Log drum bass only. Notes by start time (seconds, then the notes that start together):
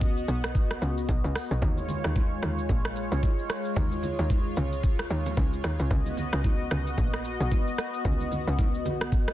Already playing: C#2
0.28 B1
0.82 C#2
1.09 B1
1.24 C#2
1.51 B1
1.62 D#2
2.05 D#2
2.43 D#2
2.69 A#1
3.12 C#2
3.76 D#2
4.19 D#2
4.57 C#2
5.10 D#2
5.37 C#2
5.64 D#2
5.80 C#2
5.91 C#2
6.33 C#2
6.71 C#2
6.98 A#1
7.40 B1
8.05 C#2
8.47 C#2
8.85 B1